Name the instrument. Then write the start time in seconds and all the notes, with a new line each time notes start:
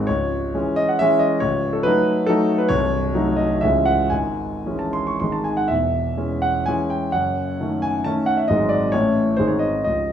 grand piano
0.07 C#1 C#2 C#5
0.54 E3 G#3 C#4
0.76 D#5
0.89 F#5
0.99 E3 G#3 C#4 E5
1.19 D#5
1.40 C#1 C#2 C#5
1.73 A4
1.83 F#3 A3 D#4 B4
2.27 F#3 A3 D#4 A4
2.58 B4
2.69 C1 C2 C#5
3.14 F#3 A3 D#4
3.37 D#5
3.61 C#1 C#2 E3 G#3 C#4 E5
3.85 F#5
4.10 G#1 G#2 G#5
4.66 E3 G#3 C#4
4.79 A5
4.93 C6
5.07 C#6
5.20 G#1 G#2 D#3 G#3 D#4 C6
5.32 A5
5.44 G#5
5.57 F#5
5.68 E1 E2 E5
6.17 E3 G#3 C#4
6.42 F#5
6.66 E3 G#3 C#4 G#5
6.90 G5
7.12 F#1 F#2 F#5
7.60 D#3 A3 C#4
7.82 G#5
8.04 D#3 A3 C#4 A5
8.26 F#5
8.37 E5
8.48 G#1 G#2 F#3 G#3 C4 D#5
8.69 D5
8.92 A1 A2 E3 C#4 E4 C#5
9.37 G#1 G#2 D#3 C4 G#4 C5
9.48 C#5
9.59 D#5
9.84 C#1 C#2 D#5